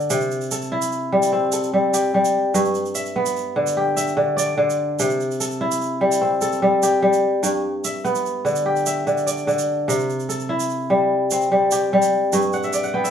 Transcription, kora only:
Already playing: D3 B3 G4 D5 E5
0.10 C3
0.51 A4
0.72 E4
1.12 G3
1.32 C4
1.53 A4
1.74 G3
1.94 G4
2.14 G3
2.54 G2
2.95 E5
3.16 B3
3.56 D3
3.77 G4
3.96 E5
4.17 D3
4.37 D5
4.58 D3
5.00 C3
5.40 A4
5.61 E4
6.01 G3
6.21 C4
6.42 A4
6.62 G3
6.83 G4
7.02 G3
7.43 G2
7.85 E5
8.04 B3
8.45 D3
8.66 G4
8.87 E5
9.07 D3
9.27 D5
9.47 D3
9.88 C3
10.29 A4
10.49 E4
10.90 G3
11.32 C4
11.52 G3
11.72 G4
11.93 G3
12.33 G2
12.54 F#5
12.64 E5
12.74 D5
12.84 F#5
12.94 B3 G5
13.04 E5

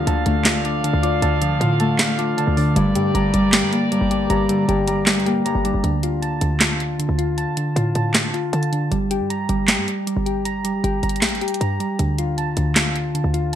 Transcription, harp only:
Already playing: F3 A#3 D4
0.06 D3
0.26 A3
0.45 D3
0.65 D4
0.84 D3
1.03 D5
1.22 D3
1.42 F3
1.61 D3
1.80 A3
1.99 D3
2.18 D4
2.38 D3
2.57 D5
2.76 G2
2.95 D3
3.15 G2
3.34 G3
3.53 G2
3.72 A#3
3.91 G2
4.11 D4
4.30 G2
4.49 D3
4.68 G2
4.87 G3
5.07 G2
5.26 A#3
5.45 G2
5.65 D4

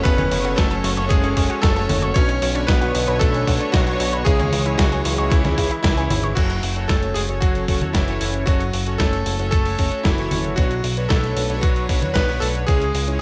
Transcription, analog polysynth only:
0.05 C#4 F#4 A4 C#5
0.45 C#4 F#4 A4 C#5
0.97 C#4 F#4 A4 C#5
1.37 C#4 F#4 A4 C#5
1.76 C#4 F#4 A4 C#5
2.16 D4 F#4 B4 C#5
2.55 D4 F#4 B4 C#5
3.08 D4 F#4 B4 C#5
3.47 D4 F#4 B4 C#5
3.87 D4 F#4 B4 C#5
4.26 C#4 E4 G#4 C#5
4.66 C#4 E4 G#4 C#5
5.18 C#4 E4 G#4 C#5
5.58 C#4 E4 G#4 C#5
5.97 C#4 E4 G#4 C#5
6.37 C#4 F#4 A4 C#5
6.76 C#4 F#4 A4 C#5
7.29 C#4 F#4 A4 C#5
7.68 C#4 F#4 A4 C#5
8.08 C#4 F#4 A4 C#5
8.47 C#4 F#4 A4 C#5
8.87 C#4 F#4 A4 C#5
9.39 C#4 F#4 A4 C#5
9.79 C#4 F#4 A4 C#5
10.18 C#4 F#4 A4 C#5
10.58 D4 F#4 B4 C#5
10.97 D4 F#4 B4 C#5
11.50 D4 F#4 B4 C#5
11.89 D4 F#4 B4 C#5
12.29 D4 F#4 B4 C#5
12.68 C#4 E4 G#4 C#5
13.08 C#4 E4 G#4 C#5

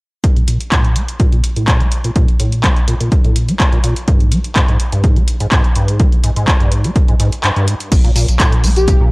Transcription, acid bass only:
0.37 A#2
0.48 A#2
0.72 A2
0.84 A#2
0.96 A#3
1.20 A#2
1.33 A#2
1.57 A2
1.68 A#2
1.81 A#3
2.04 A#2
2.16 A#2
2.40 A2
2.53 A#2
2.64 A#3
2.88 A#2
3.01 A#2
3.25 A2
3.36 A#2
3.48 A#3
3.72 A#2
3.84 A#2
4.08 G2
4.21 G#2
4.32 G#3
4.56 G#2
4.69 G#2
4.93 G2
5.04 G#2
5.16 G#3
5.41 G#2
5.52 G#2
5.76 G2
5.89 G#2
6.00 G#3
6.24 G#2
6.37 G#2
6.60 G2
6.72 G#2
6.84 G#3
7.08 G#2
7.20 G#2
7.44 G2
7.56 G2
7.68 G#2
8.04 A#2
8.16 A#2
8.40 A2
8.52 A#2
8.64 A#3
8.88 A#2
9.00 A#2

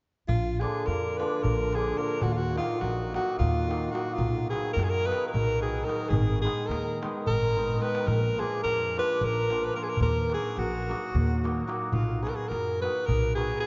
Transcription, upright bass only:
0.28 A#1
0.87 F2
1.44 A#1
2.23 D#2
2.82 A#1
3.40 D#2
4.18 B1
4.76 F#2
5.34 B1
6.10 G#1
6.69 D#2
7.29 G#1
8.07 A#1
8.64 F2
9.21 A#1
10.00 D#2
10.58 A#1
11.15 D#2
11.93 B1
12.51 F#2
13.09 B1

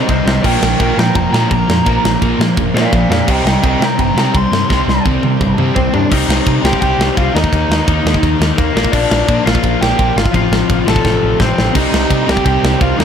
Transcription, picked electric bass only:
0.09 C2
0.26 C2
0.44 A#1
0.62 A#1
0.80 A#1
0.98 A#2
1.15 F1
1.33 A#2
1.52 A#1
1.69 F2
1.87 A#1
2.04 A#1
2.22 A#1
2.39 A#2
2.58 F1
2.74 A#2
2.93 A#1
3.09 F2
3.28 C2
3.44 C2
3.64 C2
3.80 C3
3.99 G1
4.16 C3
4.34 C2
4.52 G2
4.71 C2
4.87 C2
5.06 C2
5.24 C3
5.41 G1
5.58 C3
5.76 C2
5.94 G2
6.12 C2
6.28 C2
6.47 C3
6.63 C2
6.82 C2
6.98 C2
7.18 C2
7.35 D#2
7.53 D#2
7.69 D#2
7.88 D#2
8.05 D#2
8.23 D#2
8.40 D#2
8.59 D#2
8.75 A#1
8.93 A#1
9.11 A#1
9.29 A#2
9.46 A#1
9.64 A#1
9.81 A#1
9.99 A#1
10.16 G#1
10.34 A1
10.50 A1
10.70 A1
10.87 A1
11.05 A1
11.23 A1
11.40 A1
11.58 A1
11.76 C2
11.93 C2
12.11 C3
12.29 C2
12.46 C2
12.63 C2
12.81 C2
12.99 D#2

